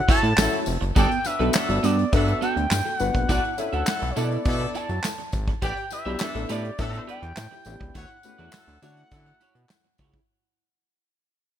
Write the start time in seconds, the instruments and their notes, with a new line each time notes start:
0.08 horn section F#3 E4 A4, clean electric guitar E4 F#4 C#5, analog synth lead A5, kick, closed hi-hat, tambourine
0.23 analog synth bass A2, muted clean electric guitar stroke, closed hi-hat
0.37 analog synth bass A1, horn section F#3 E4 A4, grand piano C#4 E4 F#4 A4, muted clean electric guitar stroke, snare, clap, tambourine
0.52 muted clean electric guitar stroke, closed hi-hat
0.66 analog synth bass F1, open hi-hat, tambourine
0.81 analog synth bass F#1, muted clean electric guitar stroke, closed hi-hat
0.95 analog synth bass G1, clean electric guitar B3 F#4 A4, horn section B3 A4 D5, analog synth lead G5, kick, closed hi-hat, tambourine
1.10 muted clean electric guitar stroke, closed hi-hat
1.25 horn section F#3 D4 B4, analog synth lead E5, muted clean electric guitar stroke, closed hi-hat, tambourine
1.39 analog synth bass B1, grand piano B3 D4 F#4 A4, clean electric guitar B3 F#4 B4, closed hi-hat
1.53 horn section F#3 D4 A4, muted clean electric guitar stroke, snare, clap, tambourine
1.69 analog synth bass G1, grand piano B3 D4 F#4 B4, muted clean electric guitar stroke, closed hi-hat
1.83 analog synth bass G2, clean electric guitar B3 F#4 A4, analog synth lead D5, closed hi-hat, tambourine
1.98 muted clean electric guitar stroke, closed hi-hat
2.12 analog synth bass G2, horn section F#3 D4 A4, grand piano B3 D4 F#4 A4, analog synth lead E5, kick, closed hi-hat, tambourine
2.27 muted clean electric guitar stroke, closed hi-hat
2.41 clean electric guitar B3 F#4 A4, analog synth lead G5, closed hi-hat, tambourine
2.56 analog synth bass D2, muted clean electric guitar stroke, closed hi-hat
2.71 analog synth bass G2, muted clean electric guitar stroke, snare, clap, tambourine
2.85 grand piano F#4 A4, muted clean electric guitar stroke, closed hi-hat
2.99 analog synth bass G1, grand piano B3 D4 F#4 B4, analog synth lead F#5, closed hi-hat, tambourine
3.14 analog synth bass A#1, muted clean electric guitar stroke, kick, closed hi-hat
3.29 analog synth bass B1, horn section A3 F#4 D5, clean electric guitar E4 A4 D5, analog synth lead F#5, kick, closed hi-hat, tambourine
3.44 muted clean electric guitar stroke, closed hi-hat
3.55 horn section F#3 E4 B4, grand piano C#4 D4 E4 A4, analog synth lead E5 F#5, muted clean electric guitar stroke, closed hi-hat, tambourine
3.73 analog synth bass D2, clean electric guitar E4 A4 E5, analog synth lead F#5, closed hi-hat
3.87 horn section F#3 E4 A4, muted clean electric guitar stroke, snare, clap, tambourine
4.02 analog synth bass B1, muted clean electric guitar stroke, closed hi-hat
4.10 analog synth lead C#5
4.16 analog synth bass B2, grand piano B3 D4 E4 A4, clean electric guitar E4 A4 D5, analog synth lead D5, closed hi-hat, tambourine
4.31 muted clean electric guitar stroke, closed hi-hat
4.45 analog synth bass B2, horn section F#3 E4 A4, kick, closed hi-hat, tambourine
4.60 muted clean electric guitar stroke, closed hi-hat
4.75 clean electric guitar E4 A4 D5, analog synth lead A5, closed hi-hat, tambourine
4.89 analog synth bass F#2, muted clean electric guitar stroke, closed hi-hat
5.04 muted clean electric guitar stroke, snare, clap, tambourine
5.19 muted clean electric guitar stroke, closed hi-hat
5.32 analog synth bass G#1, kick, closed hi-hat, tambourine
5.47 muted clean electric guitar stroke, kick, closed hi-hat
5.62 analog synth bass A1, horn section B3 G4 D5, clean electric guitar G4 B4 D5, analog synth lead G5, kick, closed hi-hat, tambourine
5.77 muted clean electric guitar stroke, closed hi-hat
5.90 horn section G3 E4 B4, analog synth lead E5, muted clean electric guitar stroke, closed hi-hat, tambourine
6.05 analog synth bass B1, grand piano B3 D4 E4 G4, clean electric guitar G4 B4 E5, closed hi-hat
6.19 horn section E3 D4 A4, muted clean electric guitar stroke, snare, clap, tambourine
6.35 analog synth bass A1, grand piano B3 D4 E4 A4, muted clean electric guitar stroke, closed hi-hat
6.49 analog synth bass A2, clean electric guitar G4 B4 D5, analog synth lead D5, closed hi-hat, tambourine
6.64 muted clean electric guitar stroke, closed hi-hat
6.78 analog synth bass A2, horn section E3 D4 A4, grand piano B3 D4 E4 A4, analog synth lead E5, kick, closed hi-hat, tambourine
6.93 muted clean electric guitar stroke, closed hi-hat
7.07 clean electric guitar G4 B4 D5, analog synth lead G5, closed hi-hat
7.22 analog synth bass E2, muted clean electric guitar stroke, closed hi-hat
7.37 analog synth bass A2, muted clean electric guitar stroke, snare, clap, tambourine
7.51 grand piano E4 G4, muted clean electric guitar stroke, closed hi-hat
7.65 analog synth bass A1, grand piano B3 D4 E4 G4, closed hi-hat, tambourine
7.80 analog synth bass C#2, muted clean electric guitar stroke, kick, closed hi-hat
7.94 analog synth bass D2, horn section A3 F#4 C#5, clean electric guitar E4 F#4 C#5, analog synth lead F#5, kick, closed hi-hat, tambourine
8.09 muted clean electric guitar stroke, closed hi-hat
8.23 grand piano A3 C#4 E4 F#4, horn section B3 G4 B4, muted clean electric guitar stroke, closed hi-hat, tambourine
8.38 analog synth bass E2, clean electric guitar E4 F#4 D5, closed hi-hat
8.52 horn section F#3 E4 A4, muted clean electric guitar stroke, snare, clap, tambourine
8.68 analog synth bass D2, muted clean electric guitar stroke, closed hi-hat
8.82 analog synth bass D3, grand piano A3 C#4 E4 F#4, clean electric guitar E4 F#4 C#5, analog synth lead F#5, closed hi-hat, tambourine
8.97 muted clean electric guitar stroke, closed hi-hat
9.11 analog synth bass D3, horn section F#3 E4 A4, kick, closed hi-hat, tambourine
9.26 muted clean electric guitar stroke, closed hi-hat
9.41 clean electric guitar E4 F#4 C#5, closed hi-hat, tambourine
9.55 analog synth bass B2, muted clean electric guitar stroke, closed hi-hat
9.69 snare, clap, tambourine
9.84 muted clean electric guitar stroke, closed hi-hat
9.98 analog synth bass C#2, clean electric guitar E4 F#4 C#5, kick, open hi-hat, tambourine
10.13 muted clean electric guitar stroke, kick, closed hi-hat